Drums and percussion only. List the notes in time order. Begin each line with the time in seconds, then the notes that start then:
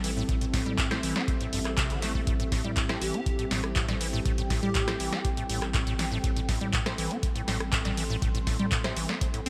0.04 open hi-hat
0.29 kick, closed hi-hat
0.41 closed hi-hat
0.54 kick, snare, open hi-hat
0.66 closed hi-hat, low conga
0.78 kick, clap, closed hi-hat
0.91 cross-stick, snare, closed hi-hat
1.03 open hi-hat
1.16 snare, closed hi-hat
1.28 kick, closed hi-hat
1.41 closed hi-hat
1.53 open hi-hat
1.65 cross-stick, clap, closed hi-hat
1.78 kick, clap, closed hi-hat
1.90 closed hi-hat
2.02 snare, open hi-hat
2.15 kick
2.27 kick, closed hi-hat
2.40 closed hi-hat
2.52 kick, snare, open hi-hat
2.65 closed hi-hat, low conga
2.77 kick, clap, closed hi-hat
2.89 cross-stick, snare, closed hi-hat
3.02 open hi-hat
3.14 closed hi-hat
3.26 kick, closed hi-hat
3.39 closed hi-hat
3.51 snare, open hi-hat
3.64 cross-stick, closed hi-hat
3.76 kick, clap, closed hi-hat
3.89 snare, closed hi-hat, low conga
4.01 open hi-hat
4.26 kick, closed hi-hat
4.38 closed hi-hat
4.50 kick, snare, open hi-hat
4.63 closed hi-hat, low conga
4.75 kick, clap, closed hi-hat
4.88 cross-stick, snare, closed hi-hat
5.00 open hi-hat
5.13 snare, closed hi-hat
5.25 kick, closed hi-hat
5.37 closed hi-hat
5.50 open hi-hat
5.62 cross-stick, clap, closed hi-hat
5.74 kick, clap, closed hi-hat
5.87 closed hi-hat
5.99 snare, open hi-hat
6.24 kick, closed hi-hat
6.37 closed hi-hat
6.49 kick, snare, open hi-hat
6.61 closed hi-hat, low conga
6.73 kick, clap, closed hi-hat
6.86 cross-stick, snare, closed hi-hat
6.98 open hi-hat
7.11 closed hi-hat
7.23 kick, closed hi-hat
7.36 closed hi-hat
7.48 snare, open hi-hat
7.60 cross-stick, closed hi-hat
7.73 kick, clap, closed hi-hat
7.85 snare, closed hi-hat, low conga
7.97 open hi-hat
8.22 kick, closed hi-hat
8.35 closed hi-hat
8.47 kick, snare, open hi-hat
8.60 closed hi-hat, low conga
8.72 kick, clap, closed hi-hat
8.84 cross-stick, snare, closed hi-hat
8.97 open hi-hat
9.09 snare
9.21 kick, closed hi-hat
9.34 closed hi-hat